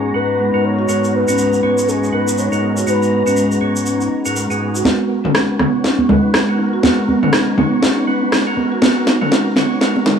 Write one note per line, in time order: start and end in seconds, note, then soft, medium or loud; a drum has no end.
0.00 0.12 G#2 medium
0.00 4.81 G#3 medium
0.00 0.12 B3 medium
0.00 4.81 B3 medium
0.00 4.81 D#4 medium
0.00 0.12 F#4 medium
0.00 0.16 G#4 loud
0.00 0.12 C#5 medium
0.00 4.81 A#5 medium
0.14 0.50 G#2 medium
0.14 0.50 B3 medium
0.14 0.50 F#4 medium
0.14 0.50 B4 medium
0.14 0.66 B4 loud
0.39 0.53 G#3 medium
0.54 0.86 G#2 medium
0.54 0.86 B3 medium
0.54 0.86 F#4 medium
0.54 0.86 A#4 medium
0.64 0.77 B3 medium
0.64 1.15 C#5 loud
0.79 0.88 F#4 loud
0.89 1.25 G#2 medium
0.89 1.02 G#3 medium
0.89 1.25 B3 medium
0.89 1.25 F#4 medium
0.89 1.25 A#4 loud
0.89 shaker medium
1.04 shaker soft
1.13 1.21 B3 medium
1.13 1.89 B4 loud
1.28 1.61 G#2 medium
1.28 1.61 B3 medium
1.28 1.34 C#4 loud
1.28 1.61 F#4 medium
1.28 1.61 A#5 loud
1.28 shaker medium
1.38 1.52 G#3 medium
1.38 shaker medium
1.53 shaker soft
1.63 2.10 G#2 medium
1.63 1.77 B3 loud
1.63 2.10 B3 medium
1.63 2.10 F#4 medium
1.63 2.10 C#5 medium
1.78 shaker medium
1.88 2.01 C#4 medium
1.88 2.15 G#4 medium
1.88 shaker medium
2.04 shaker soft
2.12 2.49 G#2 medium
2.12 2.49 B3 medium
2.12 2.49 F#4 medium
2.12 2.49 B4 medium
2.12 2.40 B4 loud
2.28 shaker medium
2.37 2.51 G#3 medium
2.37 2.87 C#5 loud
2.37 shaker medium
2.52 2.85 G#2 medium
2.52 2.85 B3 medium
2.52 2.85 F#4 medium
2.52 2.85 A#4 medium
2.52 shaker soft
2.62 2.75 B3 medium
2.76 2.86 F#4 loud
2.76 shaker medium
2.87 3.23 G#2 medium
2.87 3.00 G#3 medium
2.87 3.23 B3 medium
2.87 3.23 F#4 medium
2.87 3.83 B4 loud
2.87 3.23 A#5 loud
2.87 shaker medium
3.03 shaker soft
3.11 3.20 B3 medium
3.26 3.59 G#2 medium
3.26 3.59 B3 medium
3.26 3.32 C#4 loud
3.26 3.59 F#4 medium
3.26 3.59 A#5 loud
3.26 shaker medium
3.36 3.50 G#3 medium
3.36 shaker medium
3.52 shaker soft
3.61 4.08 G#2 medium
3.61 3.75 B3 medium
3.61 4.08 B3 medium
3.61 4.08 F#4 medium
3.61 4.08 C#5 medium
3.76 shaker medium
3.85 3.99 C#4 medium
3.85 shaker medium
4.01 shaker soft
4.25 4.47 G#2 medium
4.25 4.47 B3 medium
4.25 4.47 F#4 medium
4.25 4.47 A#4 medium
4.25 shaker medium
4.35 4.49 G#3 medium
4.35 shaker medium
4.50 4.83 G#2 medium
4.50 4.83 B3 medium
4.50 4.83 F#4 medium
4.50 4.83 G#4 loud
4.50 shaker soft
4.60 4.74 B3 medium
4.74 4.84 F#4 loud
4.74 shaker medium
4.84 4.97 G#1 loud
4.84 4.98 G#3 medium
4.84 10.19 G#3 medium
4.84 10.19 B3 medium
4.84 5.21 B3 medium
4.84 10.19 D#4 medium
4.84 5.21 F#4 medium
4.84 5.21 A#4 loud
4.84 10.19 A#5 medium
4.84 snare medium
4.84 high conga medium
5.09 5.18 B3 medium
5.24 5.57 B3 medium
5.24 5.30 C#4 medium
5.24 5.57 F#4 medium
5.24 5.57 A#4 loud
5.24 mid tom medium
5.34 5.48 G#3 medium
5.34 cross-stick loud
5.34 snare medium
5.59 6.56 G#1 medium
5.59 5.74 B3 loud
5.59 6.07 B3 medium
5.59 6.07 F#4 medium
5.59 6.07 C#5 medium
5.59 cross-stick medium
5.59 mid tom medium
5.59 high conga medium
5.84 5.98 C#4 medium
5.84 snare soft
5.99 high conga medium
6.09 6.45 B3 medium
6.09 6.45 F#4 medium
6.09 6.45 B4 loud
6.09 mid tom medium
6.09 low conga loud
6.34 6.47 G#3 medium
6.34 cross-stick loud
6.34 snare medium
6.49 6.81 B3 medium
6.49 6.81 F#4 medium
6.49 6.81 A#4 loud
6.58 7.55 G#1 medium
6.58 6.72 B3 medium
6.73 6.83 F#4 loud
6.83 6.97 G#3 medium
6.83 7.20 B3 loud
6.83 7.20 F#4 medium
6.83 7.20 A#4 loud
6.83 snare medium
6.83 high conga medium
7.08 7.16 B3 medium
7.08 high conga medium
7.23 7.55 B3 medium
7.23 7.29 C#4 medium
7.23 7.56 F#4 medium
7.23 7.55 A#4 loud
7.23 mid tom medium
7.33 7.47 G#3 medium
7.33 cross-stick loud
7.33 snare medium
7.58 8.05 G#1 medium
7.58 7.72 B3 loud
7.58 8.05 B3 medium
7.58 8.05 F#4 medium
7.58 8.05 C#5 medium
7.58 mid tom medium
7.58 high conga loud
7.82 7.96 C#4 medium
7.82 snare medium
8.07 8.20 G#1 loud
8.07 8.44 B3 medium
8.07 8.44 F#4 medium
8.07 8.44 B4 medium
8.22 8.31 B1 medium
8.32 8.46 G#3 medium
8.32 cross-stick loud
8.32 snare medium
8.47 8.79 B3 medium
8.47 8.80 F#4 medium
8.47 8.79 A#4 loud
8.57 high conga medium
8.72 8.81 F#4 loud
8.82 8.94 G#1 loud
8.82 8.95 G#3 medium
8.82 9.18 B3 medium
8.82 9.18 F#4 medium
8.82 9.18 A#4 loud
8.82 snare medium
8.82 high conga loud
9.07 9.15 B3 medium
9.07 snare medium
9.21 9.54 B3 medium
9.21 9.27 C#4 medium
9.21 9.54 F#4 medium
9.21 9.54 A#4 medium
9.21 mid tom medium
9.31 9.45 G#3 medium
9.31 snare medium
9.56 9.79 B3 medium
9.56 9.70 B3 medium
9.56 9.79 F#4 medium
9.56 9.79 C#5 medium
9.56 snare medium
9.56 mid tom medium
9.56 high conga loud
9.81 9.95 G#3 medium
9.81 10.17 B3 medium
9.81 10.17 F#4 medium
9.81 10.17 A#4 loud
9.81 snare medium
9.96 high conga medium
10.06 10.14 B3 medium
10.06 snare medium
10.06 mid tom medium
10.06 low conga medium